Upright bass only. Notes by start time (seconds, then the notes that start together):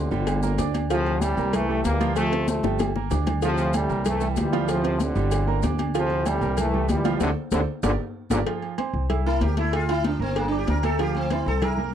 0.11 G1
0.59 D2
1.37 C2
1.85 D2
2.63 G1
3.11 D2
3.90 C2
4.37 D2
5.16 G1
5.62 D2
6.41 C2
6.88 D2
7.20 D2
7.52 D2
7.83 G1
8.30 G1
8.93 C2
9.41 D2
10.19 G1
10.67 D2
11.46 C2